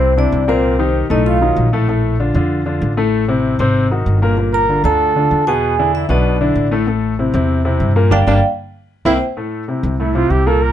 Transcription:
Already playing: upright bass C2, grand piano C3 C4 E4, muted trumpet C4, vibraphone C5
0.17 grand piano C3 C4 E4, muted trumpet D4, vibraphone D5
0.32 upright bass C2
0.47 grand piano A#2 A#3 A#4, muted trumpet C4, vibraphone C5
0.79 grand piano D#3 D#4 G4
1.10 upright bass B1, grand piano A2 A3 A4, muted trumpet D#4, vibraphone D#5
1.25 muted trumpet F4, vibraphone F5
1.41 grand piano D#3 F#3 D#4
1.56 upright bass A#1
1.73 grand piano A2 A3 A4
1.88 grand piano A2 A3 A4
2.20 grand piano D3 D4 F4
2.34 upright bass F2, grand piano D3 D4 F4
2.66 grand piano D3 D4 F4
2.82 upright bass A1
2.97 grand piano A2 A3 A4
3.28 grand piano C3 C4 E4
3.59 upright bass G#1, grand piano C3 C4 C5
3.91 grand piano D#3 D#4 F#4
4.06 upright bass G1
4.22 grand piano A#2 A#3 A#4
4.37 grand piano A#2 A#3 A#4
4.53 muted trumpet A#4, vibraphone A#5
4.69 grand piano D3 D4 F4
4.84 upright bass D2, grand piano D3 D4 F4, muted trumpet A4, vibraphone A5
5.16 grand piano D3 D4 F4
5.31 upright bass E2
5.47 grand piano B2 B3 B4, muted trumpet G#4, vibraphone G#5
5.79 grand piano D3 D4 E4
5.94 muted trumpet E4, vibraphone E5
6.09 upright bass B1, grand piano B2 B3 B4, muted trumpet D4, vibraphone D5
6.41 grand piano D3 D4 E4
6.55 upright bass A1
6.71 grand piano A2 A3 A4
6.87 grand piano A2 A3 A4
7.19 grand piano C3 C4 E4
7.34 upright bass E2, grand piano C3 C4 E4
7.65 grand piano C3 C4 E4
7.80 upright bass G2
7.96 grand piano A#2 A#3 A#4
8.11 upright bass G1, grand piano G3 A#3 D4, muted trumpet D4, vibraphone D5 F5 G5
8.27 upright bass G1, grand piano G3 A#3 D4, muted trumpet D4, vibraphone D5 F5 G5
9.05 upright bass C2, grand piano A#3 C4 E4, muted trumpet E4, vibraphone C5 E5 G5
9.37 grand piano A2 A3 A4
9.68 grand piano C3 C4 E4
9.83 upright bass C2
9.99 grand piano A2 A3 A4, muted trumpet E4
10.15 grand piano C3 C4 E4, muted trumpet F4
10.30 upright bass C2, muted trumpet G4
10.46 grand piano A#2 A#3 A#4, muted trumpet A4
10.63 muted trumpet A#4

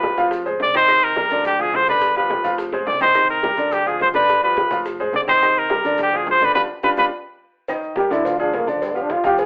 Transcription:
Already playing: fingered electric bass G1, grand piano F3 F4 G4, trumpet B4
0.03 high bongo, high conga, maracas
0.17 fingered electric bass F1, grand piano F3 F4 F5, high bongo, high conga, maracas
0.31 high bongo, high conga, maracas
0.46 grand piano G#3 G#4 C5, high conga, maracas
0.60 fingered electric bass C2, trumpet D5, high bongo, low bongo, high conga, maracas
0.74 grand piano D#3 D#4 D#5, trumpet C5, high bongo, high conga, maracas
0.88 grand piano D#3 D#4 D#5, high bongo, high conga, maracas
1.02 trumpet A#4, high bongo, high conga, maracas
1.16 grand piano G3 G4 A#4, high bongo, high conga, maracas
1.30 fingered electric bass D2, grand piano D3 D4 D5, high conga, maracas
1.45 trumpet G4, high bongo, high conga, low conga, maracas
1.59 grand piano F3 F4 G#4, trumpet G#4, high conga, low conga, maracas
1.73 fingered electric bass G1, trumpet C5, high bongo, low bongo, high conga, maracas
1.87 grand piano D3 D4 D5, trumpet B4, high bongo, high conga, maracas
2.01 high bongo, high conga, maracas
2.15 grand piano F3 F4 G4, trumpet B4, high bongo, high conga, maracas
2.30 high bongo, high conga, maracas
2.44 fingered electric bass F1, grand piano F3 F4 F5, high conga, maracas
2.58 high bongo, high conga, maracas
2.72 grand piano G#3 G#4 C5, high bongo, high conga, maracas
2.87 fingered electric bass C2, trumpet D5, low bongo, high conga, maracas
3.00 grand piano D#3 D#4 D#5, trumpet C5, low bongo, high conga, maracas
3.14 grand piano D#3 D#4 D#5, high bongo, high conga, maracas
3.29 trumpet A#4, high bongo, high conga, maracas
3.43 grand piano G3 G4 A#4, high bongo, high conga, maracas
3.57 fingered electric bass D2, grand piano D3 D4 D5, high conga, maracas
3.72 trumpet G4, high bongo, high conga, low conga, maracas
3.86 grand piano F3 F4 G#4, trumpet G#4, high conga, maracas
4.00 fingered electric bass G1, trumpet C5, high bongo, low bongo, high conga, maracas
4.14 grand piano D3 D4 D5, trumpet B4, high bongo, high conga, maracas
4.28 high bongo, high conga, maracas
4.43 grand piano F3 F4 G4, trumpet B4, high bongo, high conga, maracas
4.57 high bongo, high conga, maracas
4.71 fingered electric bass F1, grand piano F3 F4 F5, high bongo, high conga, maracas
4.86 high bongo, maracas
4.99 grand piano G#3 G#4 C5, high conga, maracas
5.13 fingered electric bass C2, trumpet D5, high bongo, low bongo, high conga, maracas
5.27 grand piano D#3 D#4 D#5, trumpet C5, high bongo, high conga, maracas
5.41 grand piano D#3 D#4 D#5, high bongo, high conga, maracas
5.55 trumpet A#4, high bongo, high conga, maracas
5.70 grand piano G3 G4 A#4, high bongo, high conga, maracas
5.84 fingered electric bass D2, grand piano D3 D4 D5, high bongo, high conga, maracas
5.97 high bongo, high conga, low conga, maracas
6.02 trumpet G4
6.12 grand piano F3 F4 G#4, high conga, low conga, maracas
6.17 trumpet G#4
6.26 fingered electric bass G1, high bongo, low bongo, high conga, maracas
6.31 trumpet C5
6.41 grand piano D3 D4 D5, trumpet B4, high bongo, high conga, maracas
6.55 fingered electric bass G1, grand piano D4 F4 G4, trumpet B4, low bongo, low conga, maracas
6.83 fingered electric bass G1, grand piano D4 F4 G4, trumpet B4, low bongo, low conga, maracas
6.97 fingered electric bass G1, grand piano D4 F4 G4, trumpet B4, low bongo, low conga, maracas
7.68 grand piano D#3 D#4 D#5, cowbell, high conga, maracas
7.83 high conga, maracas
7.96 grand piano G3 G4 A#4, trombone G4, cowbell, high conga, maracas
8.10 fingered electric bass D2, grand piano D3 D4 D5, trombone E4, cowbell, maracas
8.25 trombone F4, cowbell, high conga, low conga, maracas
8.39 grand piano F3 F4 G#4, trombone D4, high conga, maracas
8.53 fingered electric bass G1, trombone A#3, cowbell, high conga, maracas
8.67 grand piano D3 D4 D5, trombone F3, high conga, maracas
8.81 trombone G3, cowbell, high conga, maracas
8.93 grand piano F3 F4 G4, trombone B3, high conga, maracas
9.02 trombone D4
9.10 trombone F4, cowbell, high conga, maracas
9.24 fingered electric bass F1, grand piano F3 F4 F5, trombone G4, high conga, maracas
9.38 trombone G#4, cowbell, high conga, maracas

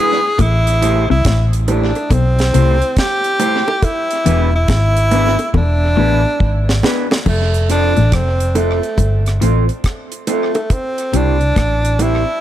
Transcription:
Already playing: clean electric guitar G#3 D4 E4 B4, tenor saxophone G#4
0.39 fingered electric bass A1, clean electric guitar A2, tenor saxophone E4, kick, closed hi-hat, high bongo
0.67 closed hi-hat
0.81 clean electric guitar A3 E4 G4 C5, closed hi-hat
1.10 fingered electric bass C2, clean electric guitar C3, tenor saxophone E4
1.25 fingered electric bass A1, clean electric guitar A2, kick, snare, closed hi-hat
1.53 closed hi-hat
1.68 clean electric guitar A3 E4 G4 C5, tenor saxophone D4, closed hi-hat, low bongo
1.95 closed hi-hat, high bongo
2.10 fingered electric bass B1, clean electric guitar B2, tenor saxophone C4, kick, closed hi-hat, high bongo
2.39 snare, closed hi-hat
2.54 fingered electric bass C2, clean electric guitar C3 A3 E4 G4 C5, closed hi-hat
2.82 closed hi-hat
2.97 tenor saxophone G4, kick, snare, closed hi-hat
3.24 closed hi-hat
3.40 clean electric guitar A3 E4 G4 C5, closed hi-hat, low bongo
3.68 high bongo
3.82 tenor saxophone E4, kick, closed hi-hat, high bongo
4.11 closed hi-hat
4.26 fingered electric bass E1, clean electric guitar E2 B3 D4 G#4 B4, closed hi-hat
4.56 tenor saxophone E4
4.68 fingered electric bass G#1, clean electric guitar G#2, kick, snare, closed hi-hat
4.97 closed hi-hat
5.11 clean electric guitar B3 D4 G#4 B4, closed hi-hat, low bongo
5.39 closed hi-hat, high bongo
5.54 fingered electric bass E1, clean electric guitar E2, tenor saxophone D4, kick, high bongo
5.97 fingered electric bass A1, clean electric guitar A2 B3 D4 G#4 B4
6.40 fingered electric bass G#1, clean electric guitar G#2, kick
6.69 snare
6.83 clean electric guitar B3 D4 G#4 B4, snare, low bongo
7.11 snare, high bongo
7.26 fingered electric bass F1, clean electric guitar F2, tenor saxophone A3, kick, crash, high bongo
7.54 closed hi-hat
7.69 clean electric guitar C4 F4 A4 C5, tenor saxophone D4, closed hi-hat
7.97 fingered electric bass A1, clean electric guitar A2, closed hi-hat
8.12 clean electric guitar F2, tenor saxophone C4, kick, cross-stick, closed hi-hat
8.40 closed hi-hat
8.55 tenor saxophone A3, clean electric guitar C4 F4 A4 C5, closed hi-hat, high bongo, low bongo
8.83 closed hi-hat
8.98 fingered electric bass G1, clean electric guitar G2, kick, closed hi-hat, high bongo
9.26 cross-stick, closed hi-hat
9.41 fingered electric bass A1, clean electric guitar A2 C4 F4 A4 C5, closed hi-hat
9.69 closed hi-hat
9.84 kick, cross-stick, closed hi-hat
10.12 closed hi-hat
10.27 tenor saxophone A3, clean electric guitar C4 F4 A4 C5, closed hi-hat, low bongo
10.55 closed hi-hat, high bongo
10.70 tenor saxophone C4, kick, closed hi-hat, high bongo
10.98 closed hi-hat
11.13 fingered electric bass C2, clean electric guitar C3 C4 E4 G4 C5, tenor saxophone D4, closed hi-hat
11.41 closed hi-hat
11.56 fingered electric bass A1, clean electric guitar A2, kick, cross-stick, closed hi-hat
11.85 closed hi-hat
11.99 clean electric guitar C4 E4 G4 C5, tenor saxophone E4, closed hi-hat, high bongo, low bongo

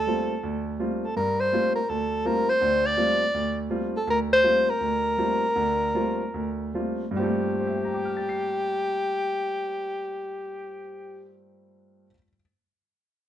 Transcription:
Already playing: soprano saxophone A4
0.07 grand piano G3 A3 A#3 C4 F4
0.43 grand piano D2
0.80 grand piano G3 A3 A#3 C4 F4
1.04 soprano saxophone A4
1.16 grand piano G2, soprano saxophone A#4
1.40 soprano saxophone C5
1.52 grand piano G3 A3 A#3 C4 F4
1.76 soprano saxophone A#4
1.89 grand piano D2, soprano saxophone A4
2.25 grand piano G3 A3 A#3 C4 F4, soprano saxophone A#4
2.49 soprano saxophone C5
2.61 grand piano D2 D3
2.86 soprano saxophone D5
2.97 grand piano G3 A3 A#3 C4 F4
3.34 grand piano D2
3.70 grand piano G3 A3 A#3 C4 F4
3.97 soprano saxophone A4
4.07 grand piano D2, soprano saxophone A#4
4.33 soprano saxophone C5
4.43 grand piano G3 A3 A#3 C4 F4
4.70 soprano saxophone A#4
4.81 grand piano D2
5.18 grand piano G3 A3 A#3 C4 F4
5.56 grand piano D2 D3
5.94 grand piano G3 A3 A#3 C4 F4
6.34 grand piano D2
6.74 grand piano G3 A3 A#3 C4 F4
7.11 grand piano G2 G3
7.16 grand piano A#3 C4, soprano saxophone G4
7.21 grand piano A3 F4
7.60 grand piano C5
7.67 grand piano E5
7.75 grand piano G5
7.85 grand piano A#5
7.94 grand piano D6
8.05 grand piano F6
8.17 grand piano A6
8.29 grand piano C7

